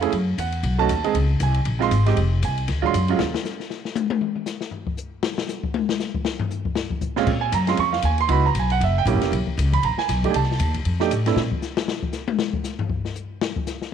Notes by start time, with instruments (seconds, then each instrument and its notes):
Already playing: upright bass F2, grand piano F5
0.01 grand piano A3 C#4 E4 G#4, ride
0.12 upright bass F#2, kick, ride
0.38 upright bass E2, grand piano F#5, kick, hi-hat pedal, ride
0.52 ride
0.63 upright bass B1, kick, ride
0.79 grand piano A3 C#4 D#4 F#4 A5
0.89 upright bass D#2, kick, hi-hat pedal, ride
1.04 grand piano G#3 C4 D#4 G#4, ride
1.14 upright bass C#2, kick, ride
1.40 upright bass C2, grand piano G#5, kick, hi-hat pedal, ride
1.54 ride
1.65 upright bass A#1, kick, ride
1.79 grand piano G#3 C4 D#4 F4 C6, snare
1.91 upright bass G#1, hi-hat pedal, ride
2.06 grand piano G#3 C4 D#4 G4, snare, ride
2.17 upright bass F1, kick, ride
2.42 upright bass C2, grand piano G#5, kick, hi-hat pedal, ride
2.58 ride
2.68 upright bass D2, kick, snare, ride
2.82 grand piano F#3 G#3 D4 F4 C6, kick
2.94 upright bass F#2, hi-hat pedal, ride
3.08 grand piano F#3 G#3 C#4 F4, ride
3.19 upright bass D#2, snare
3.34 snare
3.45 snare, hi-hat pedal
3.60 snare
3.70 snare
3.85 snare
3.95 hi-hat pedal, high tom
4.10 high tom
4.21 mid tom
4.35 mid tom
4.46 snare, hi-hat pedal
4.61 snare
4.71 floor tom
4.87 kick
4.97 hi-hat pedal
5.23 snare
5.38 snare
5.48 snare, hi-hat pedal
5.63 kick
5.74 high tom
5.89 snare
6.00 snare, hi-hat pedal
6.14 kick
6.25 snare
6.39 floor tom
6.51 floor tom, hi-hat pedal
6.65 kick
6.75 snare
6.90 kick
7.01 kick, hi-hat pedal
7.16 grand piano A#2 G#3 C4 C#4 F4, snare
7.26 upright bass A#2, kick, crash
7.41 grand piano G#5
7.52 upright bass F#2, grand piano A#5, kick, hi-hat pedal, ride
7.67 grand piano G#3 C4 C#4 F4 C6, snare, ride
7.77 upright bass F2, grand piano C#6, kick, ride
7.93 grand piano F5, snare
8.02 upright bass D#2, grand piano G#5, kick, hi-hat pedal, ride
8.18 grand piano C6, ride
8.28 upright bass C#2, grand piano B3 D#4 E4 F#4 B5, kick, ride
8.46 grand piano A#5
8.55 upright bass B1, kick, hi-hat pedal, ride
8.59 grand piano G#5
8.70 grand piano F#5, ride
8.80 upright bass F#1, grand piano E5, kick, ride
8.98 grand piano G5
9.05 upright bass A#1, grand piano A#3 C#4 E4 G4, hi-hat pedal, ride
9.14 upright bass F#1
9.22 upright bass E1, snare, ride
9.32 upright bass B1, kick, ride
9.46 muted upright bass stroke, kick
9.57 upright bass C#2, kick, hi-hat pedal, ride
9.73 grand piano B5, kick, ride
9.83 upright bass A#1, grand piano A#5, kick, ride
9.97 grand piano G#5, muted upright bass stroke, snare
10.09 upright bass B1, kick, snare, hi-hat pedal, ride
10.24 grand piano A3 D4 D#4 G4, kick, ride
10.30 upright bass C2, grand piano G#5, ride
10.36 grand piano A5
10.43 snare
10.51 snare
10.59 upright bass D#2, kick, hi-hat pedal, ride
10.74 kick, ride
10.85 upright bass F2, kick, ride
11.00 grand piano A3 D4 D#4 G4, snare
11.11 upright bass A2, kick, hi-hat pedal, ride
11.26 grand piano A3 C4 D4 E4, snare, ride
11.36 upright bass A#2, snare
11.52 kick
11.62 snare, hi-hat pedal
11.77 snare
11.88 snare
12.03 kick
12.13 snare, hi-hat pedal
12.28 high tom
12.39 snare
12.53 kick
12.64 snare, hi-hat pedal
12.79 floor tom
12.89 kick
13.05 snare
13.15 hi-hat pedal
13.41 snare
13.56 kick
13.67 snare, hi-hat pedal
13.82 snare